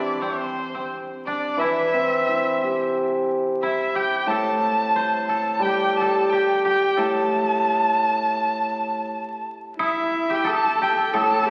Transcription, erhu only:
0.00 0.24 D5 medium
0.23 0.92 C5 medium
1.27 1.61 D5 medium
1.59 2.95 E5 medium
3.63 3.97 E5 medium
3.96 4.29 G5 medium
4.27 5.27 A5 medium
5.28 5.64 A5 medium
5.62 5.99 G5 medium
5.97 6.31 A5 medium
6.30 6.64 G5 medium
6.67 7.00 G5 medium
6.99 9.45 A5 medium
9.83 10.36 E5 medium
10.35 10.51 G5 medium
10.50 10.85 A5 loud
10.83 11.16 G5 medium
11.18 11.50 A5 medium

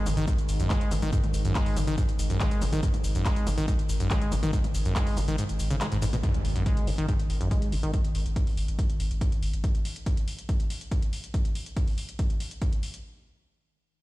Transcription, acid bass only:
0.06 0.10 A2 medium
0.17 0.26 D#3 loud
0.27 0.34 G#2 medium
0.60 0.68 F#2 medium
0.70 0.93 G#3 medium
0.91 0.95 A2 medium
1.02 1.11 D#3 loud
1.13 1.19 G#2 medium
1.45 1.53 F#2 medium
1.55 1.78 G#3 medium
1.77 1.80 A2 medium
1.87 1.96 D#3 loud
1.98 2.04 G#2 medium
2.30 2.39 F#2 medium
2.40 2.63 G#3 medium
2.62 2.65 A2 medium
2.73 2.81 D#3 loud
2.83 2.89 G#2 medium
3.15 3.24 F#2 medium
3.26 3.48 G#3 medium
3.47 3.50 A2 medium
3.58 3.66 D#3 loud
3.68 3.74 G#2 medium
4.00 4.09 F#2 medium
4.11 4.33 G#3 medium
4.32 4.35 A2 medium
4.43 4.51 D#3 loud
4.53 4.59 G#2 medium
4.85 4.94 F#2 medium
4.96 5.19 G#3 medium
5.17 5.21 A2 medium
5.28 5.36 D#3 loud
5.38 5.44 G#2 medium
5.71 5.76 C#3 loud
5.81 5.87 G#3 medium
5.92 5.97 G#2 medium
6.02 6.06 G#2 loud
6.13 6.16 B2 loud
6.24 6.29 G#2 medium
6.56 6.64 F#2 medium
6.66 6.89 G#3 medium
6.87 6.91 A2 medium
6.98 7.07 D#3 loud
7.09 7.14 G#2 medium
7.41 7.49 F#2 medium
7.51 7.74 G#3 medium
7.72 7.76 A2 medium
7.83 7.92 D#3 loud

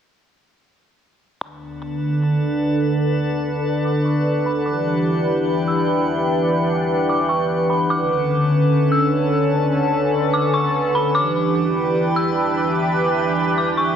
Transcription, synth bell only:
1.41 2.39 D6 loud
2.43 3.00 E6 medium
3.85 4.04 D6 medium
4.05 4.43 C#6 medium
4.46 4.65 B5 medium
4.66 5.63 D6 loud
5.68 6.25 E6 medium
7.09 7.29 D6 medium
7.29 7.67 C#6 medium
7.70 7.89 B5 medium
7.90 8.88 D6 loud
8.92 9.49 E6 medium
10.34 10.53 D6 loud
10.54 10.92 C#6 medium
10.95 11.14 B5 medium
11.15 12.12 D6 loud
12.16 12.73 E6 medium
13.58 13.77 D6 medium
13.77 13.96 C#6 medium

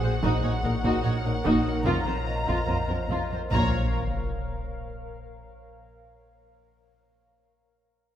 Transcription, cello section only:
0.03 0.11 A#2 medium
0.22 0.30 A#2 medium
0.42 0.50 A#2 medium
0.64 0.71 A#2 medium
0.84 0.92 A#2 medium
1.05 1.12 A#2 medium
1.25 1.33 A#2 medium
1.45 1.53 A#2 loud
1.85 1.93 F2 loud
2.06 2.14 F2 medium
2.47 2.55 F2 medium
2.69 2.77 F2 medium
2.88 2.96 F2 medium
3.09 3.17 F2 medium
3.31 3.39 F2 medium
3.53 3.98 A#2 medium

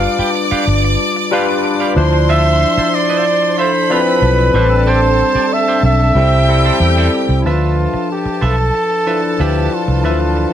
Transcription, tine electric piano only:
0.00 0.41 G3 medium
0.00 0.41 D4 medium
0.00 0.41 F4 medium
0.00 0.42 B4 medium
1.31 1.96 G3 medium
1.31 1.95 D4 medium
1.31 1.97 F4 medium
1.31 1.97 B4 loud
1.96 2.99 F3 medium
1.96 3.00 D4 medium
1.96 3.00 E4 medium
1.96 3.00 C5 loud
3.89 4.54 F3 medium
3.89 4.53 C4 medium
3.89 4.54 D4 medium
3.89 4.55 E4 medium
4.54 5.58 G3 medium
4.54 5.58 C4 medium
4.54 5.58 D4 medium
4.54 5.58 A4 medium
6.16 6.42 G3 medium
6.16 6.42 C4 medium
6.16 6.42 E4 medium
6.16 6.42 A4 medium
6.48 7.20 G3 medium
6.48 7.20 C4 medium
6.48 7.20 E4 medium
6.48 7.21 A4 medium
7.45 8.41 F3 medium
7.45 8.41 D4 medium
7.45 8.41 B4 medium
7.45 8.41 E5 medium
9.06 9.30 F3 medium
9.06 9.30 D4 medium
9.06 9.31 E4 medium
9.06 9.31 B4 medium
9.38 9.87 F3 medium
9.38 9.87 D4 medium
9.38 9.87 E4 medium
9.38 9.87 B4 medium
10.03 10.10 E3 medium
10.03 10.53 D4 medium
10.03 10.53 B4 medium
10.03 10.53 E5 medium
10.09 10.53 F3 medium

